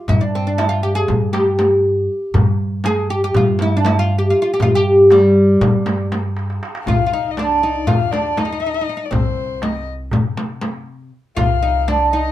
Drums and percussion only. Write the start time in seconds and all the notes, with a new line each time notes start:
0.08 frame drum, darbuka dum
0.21 darbuka ka
0.59 darbuka tek, frame drum
1.08 frame drum, darbuka dum
1.22 darbuka ka
1.33 darbuka tek, frame drum
1.59 darbuka tek, frame drum
2.34 frame drum, darbuka dum
2.47 darbuka ka
2.84 darbuka tek, frame drum
3.34 frame drum, darbuka dum
3.48 darbuka ka
3.59 darbuka tek, frame drum
3.85 darbuka tek, frame drum
4.60 frame drum, darbuka dum
5.10 darbuka tek, frame drum
5.37 darbuka ka
5.61 frame drum, darbuka dum
5.75 darbuka ka
5.86 darbuka tek, frame drum
6.12 darbuka tek, frame drum
6.37 darbuka tek
6.50 darbuka ka
6.63 darbuka tek
6.75 darbuka ka
6.87 frame drum, darbuka dum
7.37 darbuka tek, frame drum
7.87 frame drum, darbuka dum
8.01 darbuka ka
8.13 darbuka tek, frame drum
8.37 darbuka tek, frame drum
9.12 darbuka dum, frame drum
9.62 darbuka tek, frame drum
9.87 darbuka ka
10.11 darbuka dum, frame drum
10.25 darbuka ka
10.37 darbuka tek, frame drum
10.61 darbuka tek, frame drum
11.37 frame drum, darbuka dum
11.88 darbuka tek, frame drum